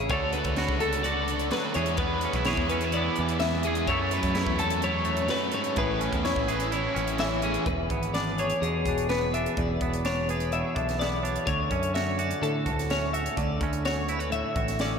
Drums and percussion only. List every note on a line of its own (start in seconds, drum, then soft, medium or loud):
0.09 kick loud
0.09 closed hi-hat medium
0.33 closed hi-hat medium
0.44 kick medium
0.44 closed hi-hat medium
0.56 snare loud
0.56 closed hi-hat medium
0.69 kick medium
0.80 closed hi-hat medium
0.93 closed hi-hat medium
1.04 closed hi-hat medium
1.28 closed hi-hat medium
1.39 closed hi-hat medium
1.51 snare loud
1.51 closed hi-hat medium
1.74 closed hi-hat medium
1.86 closed hi-hat medium
1.97 kick loud
1.97 closed hi-hat medium
2.21 closed hi-hat medium
2.33 kick medium
2.33 closed hi-hat medium
2.45 snare loud
2.45 closed hi-hat medium
2.57 kick medium
2.69 closed hi-hat medium
2.81 closed hi-hat medium
2.92 closed hi-hat medium
3.16 closed hi-hat medium
3.28 closed hi-hat medium
3.40 snare medium
3.40 closed hi-hat medium
3.53 snare soft
3.63 closed hi-hat medium
3.75 closed hi-hat medium
3.87 kick medium
3.87 closed hi-hat medium
4.11 closed hi-hat medium
4.23 kick medium
4.23 closed hi-hat medium
4.35 snare loud
4.35 closed hi-hat medium
4.47 kick medium
4.59 closed hi-hat medium
4.70 closed hi-hat medium
4.82 closed hi-hat medium
5.05 closed hi-hat medium
5.17 closed hi-hat medium
5.28 snare loud
5.28 closed hi-hat medium
5.52 closed hi-hat medium
5.64 closed hi-hat medium
5.76 kick loud
5.76 closed hi-hat medium
6.01 closed hi-hat medium
6.13 kick medium
6.13 closed hi-hat medium
6.25 snare loud
6.25 closed hi-hat medium
6.36 kick medium
6.48 closed hi-hat medium
6.60 closed hi-hat medium
6.72 closed hi-hat medium
6.96 closed hi-hat medium
7.07 closed hi-hat medium
7.18 snare loud
7.18 closed hi-hat soft
7.42 closed hi-hat medium
7.54 closed hi-hat medium
7.66 kick medium
7.66 closed hi-hat medium
7.90 kick medium
7.90 closed hi-hat medium
8.03 closed hi-hat medium
8.14 snare loud
8.14 closed hi-hat medium
8.38 closed hi-hat medium
8.50 closed hi-hat medium
8.63 closed hi-hat medium
8.86 kick medium
8.86 closed hi-hat medium
8.98 closed hi-hat medium
9.09 snare medium
9.09 closed hi-hat soft
9.34 closed hi-hat medium
9.46 closed hi-hat medium
9.57 kick medium
9.57 closed hi-hat medium
9.81 kick medium
9.81 closed hi-hat medium
9.93 closed hi-hat medium
10.05 snare loud
10.05 closed hi-hat medium
10.29 closed hi-hat medium
10.40 closed hi-hat medium
10.52 closed hi-hat medium
10.76 kick medium
10.76 closed hi-hat medium
10.89 snare soft
10.89 closed hi-hat medium
11.01 snare medium
11.01 closed hi-hat medium
11.25 closed hi-hat medium
11.36 closed hi-hat medium
11.47 kick loud
11.47 closed hi-hat medium
11.71 kick medium
11.71 closed hi-hat medium
11.83 closed hi-hat medium
11.95 snare loud
11.95 closed hi-hat medium
12.19 closed hi-hat medium
12.31 closed hi-hat medium
12.43 closed hi-hat medium
12.66 kick medium
12.66 closed hi-hat medium
12.79 snare soft
12.79 closed hi-hat medium
12.90 snare loud
12.90 closed hi-hat medium
13.14 closed hi-hat medium
13.26 closed hi-hat medium
13.37 kick loud
13.37 closed hi-hat medium
13.61 kick medium
13.61 closed hi-hat medium
13.73 closed hi-hat medium
13.85 snare loud
13.85 closed hi-hat medium
14.09 closed hi-hat medium
14.20 closed hi-hat medium
14.32 closed hi-hat medium
14.56 kick medium
14.56 closed hi-hat medium
14.68 snare soft
14.68 closed hi-hat medium
14.79 snare medium
14.79 closed hi-hat medium